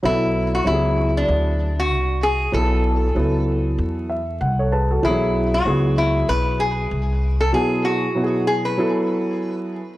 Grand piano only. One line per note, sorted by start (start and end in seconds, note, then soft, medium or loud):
0.03 0.55 F#3 medium
0.03 0.56 B3 medium
0.03 0.56 E4 medium
0.03 0.56 A4 medium
0.64 1.67 F#3 medium
0.64 1.67 B3 medium
0.64 1.67 E4 medium
0.64 0.74 G4 medium
0.73 1.71 G#4 medium
2.52 3.05 F#3 medium
2.52 3.05 B3 medium
2.52 3.06 E4 medium
2.52 2.62 G#4 medium
2.61 3.09 A4 medium
3.15 4.17 F#3 medium
3.15 4.17 B3 medium
3.15 4.17 E4 medium
3.15 4.18 A4 medium
4.10 4.39 E5 medium
4.41 4.70 F#5 medium
4.59 4.72 A4 medium
4.59 4.72 C#5 medium
4.72 4.90 G#4 medium
4.72 4.90 B4 medium
4.72 5.01 A5 medium
4.91 5.21 F#4 medium
4.91 5.20 A4 medium
5.02 5.11 E3 medium
5.02 5.55 B3 medium
5.02 5.56 E4 medium
5.02 5.56 G#4 medium
5.09 5.58 F#3 medium
5.65 6.67 F#3 medium
5.65 6.67 B3 medium
5.65 6.68 E4 medium
5.65 6.68 G#4 medium
7.52 8.05 B2 medium
7.52 8.05 F#3 medium
7.52 8.06 B3 medium
7.52 8.06 E4 medium
7.52 7.62 F#4 medium
7.61 8.09 G#4 medium
8.15 8.78 B2 medium
8.15 8.76 F#3 medium
8.15 8.77 B3 medium
8.15 8.77 E4 medium
8.15 8.24 F#4 medium
8.23 8.82 G#4 medium
8.77 9.79 F#3 medium
8.77 9.80 B3 medium
8.77 9.80 E4 medium
8.77 9.80 A4 medium